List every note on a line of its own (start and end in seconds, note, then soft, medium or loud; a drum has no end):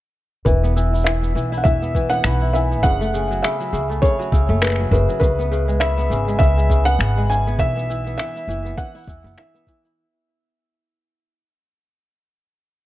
0.45 1.32 E1 medium
0.45 0.75 E3 medium
0.45 1.07 B4 medium
0.45 0.74 E5 medium
0.45 kick loud
0.45 cabasa medium
0.63 1.22 B3 medium
0.63 cabasa soft
0.76 1.05 E3 medium
0.76 1.04 E6 medium
0.76 cabasa medium
0.93 1.52 E4 medium
0.93 cabasa soft
0.96 cabasa soft
0.98 cabasa soft
1.01 cabasa soft
1.03 1.55 E5 medium
1.03 cabasa soft
1.06 1.34 E3 medium
1.06 finger snap medium
1.06 cabasa soft
1.23 1.82 B3 medium
1.23 cabasa soft
1.35 1.60 B1 medium
1.35 1.65 E3 medium
1.35 1.54 E5 medium
1.35 cabasa medium
1.52 2.41 E4 medium
1.52 cabasa soft
1.57 1.64 F#5 medium
1.64 2.21 E1 medium
1.64 1.94 E3 medium
1.64 2.07 E5 medium
1.64 1.94 E5 medium
1.64 kick loud
1.64 cabasa soft
1.82 2.12 B3 medium
1.82 cabasa soft
1.95 2.24 E3 medium
1.95 2.23 B4 loud
1.95 kick medium
1.95 cabasa medium
2.10 2.71 B3 medium
2.10 2.55 F#5 loud
2.10 cabasa soft
2.24 2.84 B1 medium
2.24 2.54 E3 medium
2.24 2.53 B5 medium
2.24 finger snap medium
2.24 cabasa medium
2.42 3.98 E4 medium
2.53 2.89 E3 medium
2.53 2.81 E5 medium
2.53 2.83 G#5 medium
2.53 cabasa medium
2.72 4.58 B3 medium
2.72 cabasa soft
2.83 3.40 F#1 medium
2.83 3.13 C#3 medium
2.83 3.12 E5 medium
2.83 3.39 F#5 loud
2.83 kick loud
2.83 cabasa medium
3.01 3.89 A3 medium
3.01 cabasa soft
3.14 3.43 C#3 medium
3.14 3.32 G#5 medium
3.14 cabasa medium
3.30 3.48 F#3 medium
3.30 cabasa soft
3.43 3.72 C#3 medium
3.43 4.04 E5 medium
3.43 3.72 B5 medium
3.43 finger snap medium
3.43 cabasa medium
3.60 3.78 F#3 medium
3.60 cabasa soft
3.72 3.98 C#2 medium
3.72 4.02 C#3 medium
3.72 4.01 E5 medium
3.72 cabasa medium
3.89 4.49 A3 medium
3.89 cabasa soft
4.02 4.31 C#3 medium
4.02 4.58 C#5 medium
4.02 4.32 E5 medium
4.02 kick loud
4.02 cabasa medium
4.19 4.38 F#3 medium
4.19 cabasa soft
4.32 4.46 C#2 medium
4.32 4.62 C#3 medium
4.32 4.61 E6 loud
4.32 kick medium
4.32 cabasa medium
4.49 4.88 F#1 medium
4.49 5.74 A3 medium
4.61 4.91 C#3 medium
4.61 4.91 B4 medium
4.61 4.90 E5 medium
4.61 finger snap medium
4.61 cabasa medium
4.65 finger snap medium
4.67 finger snap medium
4.70 finger snap medium
4.72 finger snap soft
4.76 4.97 F#3 medium
4.76 finger snap soft
4.91 5.05 F#1 loud
4.91 5.20 C#3 medium
4.91 5.18 B4 medium
4.91 5.10 E5 loud
4.91 kick medium
4.91 cabasa medium
5.09 5.27 F#3 medium
5.09 cabasa soft
5.20 6.07 C#2 medium
5.20 5.50 C#3 medium
5.20 5.82 B4 medium
5.20 5.50 E5 medium
5.20 kick loud
5.20 cabasa medium
5.39 5.97 B3 medium
5.39 cabasa soft
5.52 5.80 C#3 medium
5.52 5.80 B4 medium
5.52 cabasa medium
5.68 6.27 G#3 medium
5.68 cabasa medium
5.80 6.10 C#3 medium
5.80 6.37 E5 medium
5.80 6.09 B5 loud
5.80 finger snap medium
5.80 cabasa soft
5.98 6.87 B3 medium
5.98 cabasa soft
6.10 6.36 G#1 medium
6.10 6.39 C#3 medium
6.10 6.39 G#5 medium
6.10 cabasa medium
6.28 6.56 G#3 medium
6.28 cabasa medium
6.39 6.96 C#2 medium
6.39 6.69 C#3 medium
6.39 6.83 E5 loud
6.39 6.68 E5 medium
6.39 kick loud
6.39 cabasa medium
6.57 7.16 G#3 medium
6.57 cabasa soft
6.69 7.00 C#3 medium
6.69 6.88 G#5 loud
6.69 kick medium
6.69 cabasa medium
6.85 7.47 B3 medium
6.85 7.30 F#5 loud
6.85 cabasa soft
6.99 7.55 G#1 medium
6.99 7.29 C#3 medium
6.99 7.28 B5 medium
6.99 finger snap medium
6.99 cabasa medium
7.17 7.64 G#3 medium
7.30 7.64 C#3 medium
7.30 7.58 E5 loud
7.30 7.60 G#5 loud
7.30 cabasa medium
7.47 7.76 B3 loud
7.47 cabasa soft
7.58 8.15 B1 medium
7.58 7.89 E3 medium
7.58 8.16 E5 loud
7.58 kick loud
7.58 cabasa medium
7.77 8.06 B3 medium
7.77 cabasa soft
7.90 8.18 E3 medium
7.90 8.18 E6 medium
7.90 cabasa medium
8.07 8.64 B3 medium
8.07 cabasa soft
8.18 8.47 E3 medium
8.18 8.74 E5 medium
8.18 finger snap medium
8.18 cabasa medium
8.36 8.94 E4 medium
8.36 cabasa medium
8.47 8.73 F#1 medium
8.47 8.77 E3 medium
8.47 8.67 E5 loud
8.47 cabasa medium
8.65 9.24 B3 medium
8.65 cabasa soft
8.78 9.07 E3 medium
8.78 9.07 E5 medium
8.78 9.39 F#5 loud
8.78 kick loud
8.78 cabasa medium
8.95 9.84 E4 medium
8.95 cabasa soft
8.97 cabasa soft
9.00 cabasa soft
9.03 cabasa soft
9.06 9.21 E2 medium
9.06 9.36 E3 medium
9.06 kick loud
9.06 cabasa soft
9.09 9.27 E6 loud
9.09 cabasa medium
9.24 9.35 F#1 medium
9.24 9.54 B3 medium
9.24 cabasa soft
9.38 9.67 E3 medium
9.38 9.81 E5 medium
9.38 9.67 E6 loud
9.38 finger snap medium
9.38 cabasa medium
9.54 11.41 B3 medium
9.54 cabasa soft
9.67 10.02 E3 medium
9.67 9.96 E6 medium
9.67 kick medium
9.67 cabasa medium
9.85 11.42 E4 medium
9.85 cabasa soft